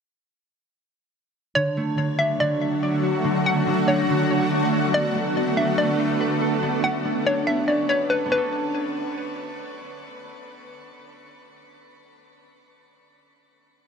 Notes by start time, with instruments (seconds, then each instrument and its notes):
1.55 harp D3, ambient pad D3 F#3 A3 F#4, synth pluck C#5
1.77 harp A3
1.97 harp D3
2.19 harp D4, synth pluck E5
2.40 harp D3, synth pluck D5
2.83 harp D6
3.03 harp F#4
3.24 harp D3
3.46 harp C#4, synth pluck F#5
3.67 harp D3
3.88 harp D4, synth pluck C#5
4.09 harp D3
4.30 harp C#5
4.52 harp D5
4.73 harp F#4
4.94 ambient pad A3 B3 D4, harp B3, synth pluck D5
5.15 harp A3
5.36 harp B3
5.57 harp D4, synth pluck E5
5.78 harp B3, synth pluck D5
6.20 harp B4
6.42 harp A4
6.63 harp B3
6.83 harp C#4, synth pluck F#5
7.05 harp B3
7.27 harp D4, synth pluck C#5
7.47 harp B3, synth pluck E5
7.68 harp C#4, synth pluck D5
7.89 harp B4, synth pluck C#5
8.10 harp A4, synth pluck B4
8.26 harp B3 C#4
8.32 harp D4, synth pluck B4
8.38 harp A4